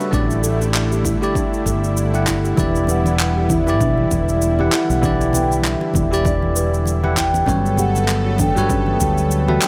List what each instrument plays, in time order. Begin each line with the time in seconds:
Already playing: analog synth pad C#3 A3 F#4, tine electric piano G3 F#4 A4 B4 C#5 E5
0.00 synth arpeggio sound F#4, shaker
0.11 fretless electric bass A1, analog synth pad D3 G3 E4, tine electric piano A3 E4 G4 D5, synth arpeggio sound D4, kick, shaker
0.31 shaker
0.43 synth arpeggio sound A4, shaker
0.62 shaker
0.74 clap, shaker
0.92 synth arpeggio sound G4, shaker
1.05 synth arpeggio sound E4, kick, shaker
1.21 tine electric piano A3 E4 G4 D5, synth arpeggio sound G4, shaker
1.35 synth arpeggio sound D4, kick, shaker
1.54 shaker
1.66 fretless electric bass G1, synth arpeggio sound A4, kick, shaker
1.84 shaker
1.97 shaker
2.13 tine electric piano A3 E4 G4 F#5, synth arpeggio sound G4, shaker
2.27 synth arpeggio sound E4, kick, clap, shaker
2.44 synth arpeggio sound G4, shaker
2.57 fretless electric bass E1, analog synth pad D3 B3, tine electric piano E3 E4 G4 D5, synth arpeggio sound D4, kick, muted conga, high conga, shaker
2.75 shaker
2.87 synth arpeggio sound B4, vibraphone F#5, low conga, shaker
3.06 muted conga, high conga, shaker
3.19 clap, shaker
3.37 synth arpeggio sound G4
3.49 synth arpeggio sound E4, vibraphone E5, kick, high conga, shaker
3.66 tine electric piano E3 E4 G4 D5, synth arpeggio sound G4, muted conga, shaker
3.81 fretless electric bass B1, synth arpeggio sound D4, kick, shaker
3.98 high conga
4.11 fretless electric bass E1, synth arpeggio sound B4, kick, muted conga, shaker
4.29 shaker
4.42 shaker
4.59 tine electric piano E3 E4 G4 F#5, synth arpeggio sound G4, high conga
4.72 synth arpeggio sound E4, vibraphone F#5, clap, muted conga, shaker
4.90 fretless electric bass B1, synth arpeggio sound G4, shaker
5.02 tine electric piano E3 E4 G4 D5, synth arpeggio sound D4, kick, high conga, shaker
5.21 muted conga, shaker
5.33 synth arpeggio sound B4, vibraphone G5, low conga, shaker
5.51 high conga, shaker
5.64 vibraphone E5, clap, shaker
5.81 synth arpeggio sound G4, muted conga
5.94 fretless electric bass E1, synth arpeggio sound E4, kick, high conga, shaker
6.11 tine electric piano E3 E4 G4 D5, synth arpeggio sound G4, shaker
6.25 synth arpeggio sound D4, vibraphone D5, kick, muted conga, shaker
6.42 high conga
6.56 synth arpeggio sound B4, shaker
6.74 shaker
6.85 muted conga, shaker
7.03 tine electric piano E3 E4 G4 F#5, synth arpeggio sound G4, high conga
7.17 synth arpeggio sound E4, vibraphone G5, kick, clap, shaker
7.34 synth arpeggio sound G4, muted conga, shaker
7.46 fretless electric bass G1, analog synth pad C#3 A3 B3 A4, tine electric piano F#3 G3 A4 B4 C#5, synth arpeggio sound C#4, kick, high conga, shaker
7.66 shaker
7.77 synth arpeggio sound G4, vibraphone F#5, low conga, shaker
7.95 muted conga, high conga, shaker
8.08 clap, shaker
8.26 synth arpeggio sound F#4
8.38 synth arpeggio sound D4, vibraphone G5, kick, muted conga, high conga, shaker
8.55 fretless electric bass G2, tine electric piano F#3 G3 A4 B4 C#5, synth arpeggio sound F#4, shaker
8.70 synth arpeggio sound C#4, kick, shaker
8.86 high conga
9.00 fretless electric bass D2, synth arpeggio sound G4, kick, muted conga, shaker
9.18 shaker
9.31 shaker
9.48 tine electric piano G3 F#4 A4 B4 E5, synth arpeggio sound F#4, muted conga, high conga
9.62 synth arpeggio sound D4, vibraphone G5, clap, shaker